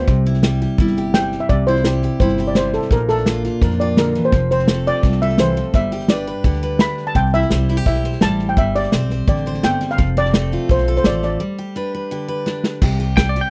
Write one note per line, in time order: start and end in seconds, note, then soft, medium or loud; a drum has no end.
0.00 0.43 G3 medium
0.00 0.43 G4 medium
0.00 1.18 C5 medium
0.07 0.64 C2 medium
0.07 1.48 C3 medium
0.07 kick loud
0.07 snare soft
0.25 0.80 E4 medium
0.25 snare soft
0.34 snare soft
0.43 0.78 G3 medium
0.43 0.61 G4 medium
0.43 snare loud
0.43 hi-hat pedal medium
0.61 0.97 G4 medium
0.61 snare soft
0.78 1.35 G1 medium
0.78 1.13 G3 medium
0.78 1.48 E4 medium
0.78 kick loud
0.78 snare soft
0.87 snare soft
0.96 1.48 G4 medium
0.96 snare soft
1.14 1.84 G3 medium
1.14 1.39 G5 medium
1.14 snare medium
1.14 hi-hat pedal medium
1.32 snare soft
1.40 1.50 E5 medium
1.49 2.06 C2 medium
1.49 2.89 C3 medium
1.49 1.68 D5 medium
1.49 kick loud
1.49 snare soft
1.67 2.21 E4 medium
1.67 2.00 C5 medium
1.67 snare soft
1.76 snare soft
1.84 2.20 G3 medium
1.84 2.03 G4 medium
1.84 snare loud
1.84 hi-hat pedal medium
2.02 2.39 G4 medium
2.02 snare soft
2.20 2.76 G1 medium
2.20 2.56 G3 medium
2.20 2.90 E4 medium
2.20 2.45 C5 medium
2.20 kick loud
2.20 snare soft
2.28 snare soft
2.37 2.90 G4 medium
2.37 snare soft
2.48 2.55 D5 medium
2.55 2.92 G3 medium
2.55 2.74 C5 medium
2.55 snare loud
2.55 hi-hat pedal medium
2.73 2.92 A4 medium
2.73 snare soft
2.82 snare soft
2.90 3.47 A#1 medium
2.90 4.31 A#2 medium
2.90 3.10 A#4 medium
2.90 kick loud
2.90 snare soft
3.08 3.62 D4 medium
3.08 3.42 A4 medium
3.08 snare soft
3.18 snare soft
3.26 4.31 A#3 medium
3.26 3.44 F4 medium
3.26 snare loud
3.26 hi-hat pedal medium
3.44 3.80 F4 medium
3.44 snare soft
3.61 4.18 F2 medium
3.61 3.98 F3 medium
3.61 4.31 D4 medium
3.61 3.80 A#4 medium
3.61 kick loud
3.61 snare soft
3.71 snare soft
3.80 4.31 F4 medium
3.80 3.98 D5 medium
3.80 snare soft
3.97 4.15 D3 medium
3.97 4.23 A#4 medium
3.97 snare loud
3.97 hi-hat pedal medium
4.15 4.33 E3 medium
4.15 snare soft
4.25 4.50 C5 medium
4.32 4.89 F1 medium
4.32 5.39 F3 medium
4.32 kick loud
4.32 snare soft
4.50 5.04 C4 medium
4.50 4.87 C5 medium
4.50 snare soft
4.59 snare soft
4.68 5.73 A3 medium
4.68 5.21 A4 medium
4.68 snare loud
4.68 hi-hat pedal medium
4.86 5.73 F4 medium
4.86 5.23 D5 medium
4.86 snare soft
5.03 5.59 C2 medium
5.03 5.73 C3 medium
5.03 5.75 C4 medium
5.03 kick loud
5.03 snare soft
5.12 snare soft
5.21 5.75 A4 medium
5.21 5.40 E5 medium
5.21 snare soft
5.29 snare soft
5.38 5.57 E3 medium
5.38 5.76 C5 medium
5.38 snare loud
5.38 hi-hat pedal medium
5.56 5.74 F3 medium
5.56 snare soft
5.73 6.30 G1 medium
5.73 7.51 G3 medium
5.73 6.11 E5 medium
5.73 kick loud
5.73 snare soft
5.91 6.45 G4 medium
5.91 snare soft
6.00 snare soft
6.08 6.80 D4 medium
6.08 6.26 B4 medium
6.08 6.76 D5 medium
6.08 snare loud
6.08 hi-hat pedal medium
6.27 6.62 B4 medium
6.27 snare soft
6.44 7.01 D2 medium
6.44 7.16 D3 medium
6.44 7.69 G4 medium
6.44 kick loud
6.44 snare soft
6.53 snare soft
6.62 7.14 B4 medium
6.62 snare soft
6.79 7.14 D4 medium
6.79 7.05 B5 medium
6.79 snare loud
6.79 hi-hat pedal medium
6.97 snare soft
7.07 7.16 A5 medium
7.15 7.43 C2 medium
7.15 7.86 C3 medium
7.15 7.34 G5 medium
7.15 kick loud
7.15 snare soft
7.33 7.68 E4 medium
7.33 7.67 E5 medium
7.33 snare soft
7.42 snare soft
7.50 7.81 C2 medium
7.50 8.21 G3 medium
7.50 8.05 C5 medium
7.50 snare loud
7.50 hi-hat pedal medium
7.68 7.77 E4 medium
7.68 snare soft
7.77 8.57 G4 soft
7.86 8.16 B1 medium
7.86 8.56 E4 medium
7.86 8.11 E5 medium
7.86 kick loud
7.86 snare soft
7.95 snare soft
8.04 8.94 C5 medium
8.04 snare soft
8.12 snare soft
8.21 8.52 A1 medium
8.21 8.57 G3 medium
8.21 8.47 A5 medium
8.21 snare loud
8.21 hi-hat pedal medium
8.39 snare soft
8.49 8.58 G5 medium
8.56 8.85 G1 medium
8.56 9.63 G3 medium
8.56 8.76 E5 medium
8.56 kick loud
8.56 snare soft
8.75 9.27 G4 medium
8.75 9.08 D5 medium
8.75 snare soft
8.83 snare soft
8.92 9.23 B1 medium
8.92 10.16 C4 medium
8.92 9.11 C5 medium
8.92 snare loud
8.92 hi-hat pedal medium
9.10 9.46 C5 medium
9.10 snare soft
9.27 9.58 A1 medium
9.27 9.98 D3 medium
9.27 9.97 G4 medium
9.27 9.53 D5 medium
9.27 kick loud
9.27 snare soft
9.36 snare soft
9.45 9.97 C5 medium
9.45 snare soft
9.54 snare soft
9.63 9.94 G1 medium
9.63 9.80 A3 medium
9.63 9.91 G5 medium
9.63 snare loud
9.63 hi-hat pedal medium
9.81 9.99 G3 medium
9.81 snare soft
9.90 10.18 F5 medium
9.90 snare soft
9.98 10.55 F1 medium
9.98 11.38 F3 medium
9.98 kick loud
9.98 snare soft
10.16 10.69 C4 medium
10.16 10.67 D5 medium
10.16 snare soft
10.25 snare soft
10.34 11.04 A3 medium
10.34 10.87 A4 medium
10.34 snare loud
10.34 hi-hat pedal medium
10.51 11.39 F4 medium
10.51 snare soft
10.69 11.00 B1 medium
10.69 11.41 C4 medium
10.69 10.95 C5 medium
10.69 kick loud
10.69 snare soft
10.78 snare soft
10.87 11.41 A4 medium
10.87 snare soft
10.96 11.06 C5 medium
10.96 snare soft
11.04 11.35 A1 medium
11.04 11.38 A3 medium
11.04 11.22 D5 medium
11.04 snare loud
11.04 hi-hat pedal medium
11.22 12.43 D5 medium
11.22 snare soft
11.40 13.16 G3 medium
11.58 12.11 G4 medium
11.76 12.45 D4 medium
11.76 11.93 B4 medium
11.95 12.27 B4 medium
12.11 12.82 D3 medium
12.11 12.80 G4 medium
12.28 12.80 B4 medium
12.46 12.80 D4 medium
12.46 snare medium
12.64 snare medium
12.82 13.38 C2 medium
12.82 13.50 C3 medium
12.82 12.99 G4 medium
12.82 kick loud
12.82 snare soft
12.82 crash loud
12.91 snare soft
13.00 13.18 G4 medium
13.00 snare soft
13.17 13.50 G3 medium
13.17 13.36 G4 medium
13.17 13.29 G5 medium
13.17 kick medium
13.17 snare loud
13.17 hi-hat pedal medium
13.29 13.41 D5 medium
13.35 13.50 G4 medium
13.35 snare soft
13.41 13.50 G5 medium